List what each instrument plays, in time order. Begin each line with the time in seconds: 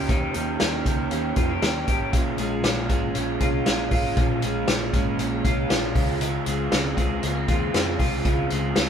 Already playing: clean electric guitar A#3 C#4 G4 A#4
0.09 fingered electric bass D#2, overdriven electric guitar D#3 A#3 C#4 G4, kick, closed hi-hat
0.34 fingered electric bass D#2, overdriven electric guitar A#3 C#4 G4, closed hi-hat
0.59 fingered electric bass D#2, overdriven electric guitar D#3 A#3 C#4 G4, snare, closed hi-hat
0.85 fingered electric bass C#2, overdriven electric guitar A#3 C#4 G4, kick, closed hi-hat
1.11 fingered electric bass D#2, overdriven electric guitar D#3 A#3 C#4 G4, closed hi-hat
1.36 fingered electric bass F2, overdriven electric guitar A#3 C#4 G4, clean electric guitar F4, kick, closed hi-hat
1.49 clean electric guitar G4
1.62 fingered electric bass D#2, overdriven electric guitar D#3 A#3 C#4 G4, snare, closed hi-hat
1.88 fingered electric bass G#1, overdriven electric guitar A#3 C#4 G4, kick, closed hi-hat
2.13 fingered electric bass A#1, overdriven electric guitar A#2 F3 G#3 C#4 F4, kick, closed hi-hat
2.38 fingered electric bass A#1, overdriven electric guitar G#3 C#4 F4, closed hi-hat
2.64 fingered electric bass A#1, overdriven electric guitar F3 G#3 C#4 F4, snare, closed hi-hat
2.89 fingered electric bass G#1, overdriven electric guitar G#3 C#4 F4, kick, closed hi-hat
3.15 fingered electric bass A#1, overdriven electric guitar A#2 F3 G#3 C#4 F4, closed hi-hat
3.40 fingered electric bass C2, overdriven electric guitar G#3 C#4 F4, kick, closed hi-hat
3.66 fingered electric bass A#1, overdriven electric guitar F3 G#3 C#4 F4, snare, closed hi-hat
3.90 fingered electric bass G#1, overdriven electric guitar G#3 C#4 F4, kick, open hi-hat
4.17 fingered electric bass A#1, overdriven electric guitar A#2 F3 G#3 C#4 F4, kick, closed hi-hat
4.42 fingered electric bass A#1, overdriven electric guitar G#3 C#4 F4, closed hi-hat
4.68 fingered electric bass A#1, overdriven electric guitar F3 G#3 C#4 F4, snare, closed hi-hat
4.93 fingered electric bass G#1, overdriven electric guitar G#3 C#4 F4, kick, closed hi-hat
5.19 fingered electric bass A#1, overdriven electric guitar A#2 F3 G#3 C#4 F4, closed hi-hat
5.44 fingered electric bass C2, overdriven electric guitar G#3 C#4 F4, kick, closed hi-hat
5.69 fingered electric bass A#1, overdriven electric guitar F3 G#3 C#4 F4, snare, closed hi-hat
5.95 fingered electric bass C#2, clean electric guitar C#3, overdriven electric guitar G#3 C4 F4, kick, open hi-hat
6.20 overdriven electric guitar C#3 G#3 C4 F4, closed hi-hat
6.46 fingered electric bass C#2, overdriven electric guitar G#3 C4 F4, closed hi-hat
6.72 fingered electric bass C#2, overdriven electric guitar C#3 G#3 C4 F4, snare, closed hi-hat
6.97 fingered electric bass C#2, clean electric guitar G#3, overdriven electric guitar C4 F4, kick, closed hi-hat
7.01 overdriven electric guitar G#3
7.23 fingered electric bass C#2, overdriven electric guitar C#3 G#3 C4 F4, clean electric guitar A#3, closed hi-hat
7.36 clean electric guitar C4
7.48 fingered electric bass D#2, overdriven electric guitar G#3 C4 F4, kick, closed hi-hat
7.73 fingered electric bass F2, overdriven electric guitar C#3 G#3 C4 F4, snare, closed hi-hat
7.99 fingered electric bass C2, overdriven electric guitar G#3 C4 F4, kick, open hi-hat
8.24 fingered electric bass C#2, overdriven electric guitar C#3 G#3 C4 F4, kick, closed hi-hat
8.50 fingered electric bass C#2, overdriven electric guitar G#3 C4 F4, closed hi-hat
8.75 fingered electric bass C#2, overdriven electric guitar C#3 G#3 C4 F4, snare, closed hi-hat